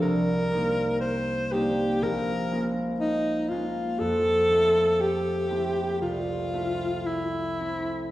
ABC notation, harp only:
X:1
M:4/4
L:1/8
Q:1/4=60
K:Flyd
V:1 name="Harp"
[C,,C] [G,_B,C_E]2 [G,B,CE] _B,,, [_A,B,_DF]2 [A,B,DF] | F,, [A,CE]2 [A,CE] C,, [A,CE]2 [A,CE] |]